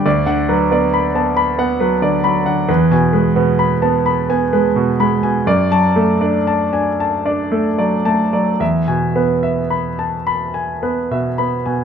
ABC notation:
X:1
M:6/8
L:1/16
Q:3/8=42
K:Emix
V:1 name="Grand piano"
d f B d b a b f B d b f | B g B B,, b a b g B2 b g | d a A d a g a d A d a d | e g B e b a b g B e b g |]
V:2 name="Grand piano" clef=bass
D,, D, F, B,2 B,2 B, F, D, F, D, | E,, B,, G, B,2 B,2 B, G, B,, G, B,, | F,, F, A, D2 D2 D A, F, A, F, | E,, B,, B,2 z4 B, B,, B, B,, |]